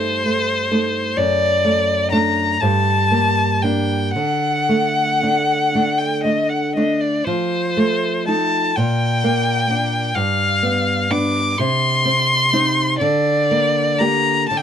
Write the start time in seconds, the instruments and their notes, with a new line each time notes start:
Already playing: nylon-string guitar G2 A3 D#4, violin C5
0.26 nylon-string guitar A3
0.71 nylon-string guitar A3 D#4
1.17 nylon-string guitar F#2, violin D5
1.65 nylon-string guitar A3
2.12 nylon-string guitar A3 D4, violin A#5
2.60 nylon-string guitar G2, violin A5
3.11 nylon-string guitar A#3
3.62 nylon-string guitar A#3 D4, violin G5
4.15 nylon-string guitar D3, violin F#5
4.69 nylon-string guitar A3
5.23 nylon-string guitar A3 D4
5.75 nylon-string guitar A3 D4
5.98 violin G5
6.24 nylon-string guitar A3, violin D#5
6.50 violin F#5
6.75 nylon-string guitar A3 D4, violin D#5
7.00 violin D5
7.25 nylon-string guitar F3, violin C5
7.77 nylon-string guitar A3
8.28 nylon-string guitar A3 D#4, violin A5
8.77 nylon-string guitar A#2, violin G5
9.24 nylon-string guitar A#3
9.70 nylon-string guitar A#3 D4
10.15 nylon-string guitar G2, violin F5
10.63 nylon-string guitar B3
11.11 nylon-string guitar B3 D4, violin D6
11.58 nylon-string guitar C3, violin C6
12.05 nylon-string guitar C4
12.53 nylon-string guitar C4 D#4
13.00 nylon-string guitar D3, violin D5
13.51 nylon-string guitar A#3
13.99 nylon-string guitar A#3 G4, violin A#5
14.49 nylon-string guitar D3, violin A5
14.57 violin G5